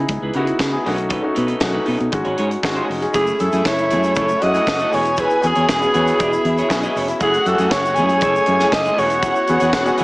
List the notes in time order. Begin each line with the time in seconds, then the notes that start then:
Already playing: B3 D#4 E4 G#4
0.08 C#2, muted clean electric guitar stroke, kick, closed hi-hat
0.22 C#2 E4 G#4 B4
0.33 C#3 B3 D#4 E4 F#4 G#4 B4, closed hi-hat
0.47 muted clean electric guitar stroke, closed hi-hat
0.59 C#3, kick, snare, closed hi-hat
0.72 B3 D#4 E4 G#4, muted clean electric guitar stroke
0.85 B1 A3 C#4 D#4 F#4 A4 B4, open hi-hat
0.98 muted clean electric guitar stroke, closed hi-hat
1.09 D#4 A4 B4, kick, closed hi-hat
1.22 A3 C#4 D#4 F#4, muted clean electric guitar stroke
1.35 B2 D#4 A4 B4, closed hi-hat
1.47 D#4 A4 B4, closed hi-hat
1.60 B1 A3 C#4 D#4 F#4, muted clean electric guitar stroke, kick, snare, closed hi-hat
1.73 D#4 A4 B4
1.86 B2 D#4 A4 B4, open hi-hat
1.99 B2, muted clean electric guitar stroke, closed hi-hat
2.12 G#1 G#3 C#4 D#4 F#4, muted clean electric guitar stroke, kick, closed hi-hat
2.25 G#1 F#4 G#4 C#5, closed hi-hat
2.37 G#2 F#4 G#4 C#5, closed hi-hat
2.50 muted clean electric guitar stroke, closed hi-hat
2.63 G#1 G#3 C#4 D#4 F#4, muted clean electric guitar stroke, kick, snare, closed hi-hat
2.75 F#4 G#4 C#5, closed hi-hat
2.89 F1, muted clean electric guitar stroke, open hi-hat
3.01 G#3 C#4 D#4 G#4, muted clean electric guitar stroke, closed hi-hat
3.13 F#1 A3 C#4 E4 G#4 E5, kick, closed hi-hat, shaker
3.27 muted clean electric guitar stroke, shaker
3.39 F#2 A3 C#4 E4 G#4 A4, muted clean electric guitar stroke, closed hi-hat, shaker
3.52 F#2 A3 E4 G#4, closed hi-hat, shaker
3.65 F#1 C#5, kick, snare, shaker
3.78 muted clean electric guitar stroke, closed hi-hat, shaker
3.90 F#2 A3 E4 G#4, closed hi-hat, shaker
4.03 A3 E4 G#4, closed hi-hat, shaker
4.15 F#1 A3 C#4 E4 A4 C#5, kick, closed hi-hat, shaker
4.29 muted clean electric guitar stroke, shaker
4.40 F#2 G#3 C#4 E4 F#4 D#5 F#5, muted clean electric guitar stroke, closed hi-hat
4.46 A3
4.54 A3 E4 G#4, closed hi-hat, shaker
4.67 F#1, kick, snare, shaker
4.79 A3 E4 A4, closed hi-hat, shaker
4.91 E1 B3 C#4 E4 F#4 G#4 C#5 G#5, open hi-hat, shaker
5.05 muted clean electric guitar stroke, closed hi-hat, shaker
5.17 E4 G#4 B4 C#5, kick, closed hi-hat, shaker
5.30 muted clean electric guitar stroke, shaker
5.41 E2 B3 C#4 F#4 G#4, muted clean electric guitar stroke, closed hi-hat, shaker
5.46 G#4
5.55 E2 E4 G#4 C#5, closed hi-hat, shaker
5.69 E1, muted clean electric guitar stroke, kick, snare, shaker
5.80 B3 C#4 F#4 G#4, muted clean electric guitar stroke, closed hi-hat, shaker
5.92 E2 B3 C#4 E4 F#4 G#4 B4 C#5, closed hi-hat, shaker
6.06 E4 G#4 C#5, closed hi-hat, shaker
6.18 E1 E4 G#4 D#5 E5, kick, closed hi-hat, shaker
6.33 muted clean electric guitar stroke, shaker
6.45 E2, muted clean electric guitar stroke, closed hi-hat
6.58 E4 G#4 C#5, closed hi-hat, shaker
6.69 B1 B3 C#4 F#4 G#4, muted clean electric guitar stroke, kick, snare, shaker
6.83 E4 G#4 D#5, shaker
6.96 F1 E4 G#4 C#5, open hi-hat, shaker
7.08 muted clean electric guitar stroke, closed hi-hat, shaker
7.19 F#1 A3 C#4 E4 F#4 G#4 F#5, kick, closed hi-hat, shaker
7.34 muted clean electric guitar stroke, closed hi-hat, shaker
7.45 F#2 A3 C#4 E4 G4 A4, muted clean electric guitar stroke, closed hi-hat, shaker
7.53 G#4
7.58 F#2 A3 E4 G#4, closed hi-hat, shaker
7.70 F#1 C#5, kick, snare, shaker
7.84 muted clean electric guitar stroke, shaker
7.95 F#2 A3 E4 G#4 G#5, closed hi-hat, shaker
8.09 A3 E4 G#4, closed hi-hat, shaker
8.21 F#1 A3 C#4 E4 G#4 A4 C#5, kick, closed hi-hat, shaker
8.36 muted clean electric guitar stroke, shaker
8.46 F#2 A3 C#4 E4 G#4, muted clean electric guitar stroke, closed hi-hat
8.60 A3 E4 G#4, snare, closed hi-hat, shaker
8.72 F#1 D#5, muted clean electric guitar stroke, kick, snare, shaker
8.85 A3 E4 A4, shaker
8.96 E1 B3 C#4 E4 F#4 G#4 C#5 F#5, open hi-hat, shaker
9.10 muted clean electric guitar stroke, closed hi-hat, shaker
9.22 E4 G#4 C#5, kick, closed hi-hat, shaker
9.35 muted clean electric guitar stroke, shaker
9.47 E2 B3 C#4 F#4 G#4, muted clean electric guitar stroke, closed hi-hat, shaker
9.60 E2 E4 G#4 C#5, closed hi-hat, shaker
9.72 E1, muted clean electric guitar stroke, kick, snare, shaker
9.85 B3 C#4 F#4 G#4, muted clean electric guitar stroke, closed hi-hat, shaker
9.97 E2 B3 C#4 E4 F#4 G#4 A4 C#5, closed hi-hat, shaker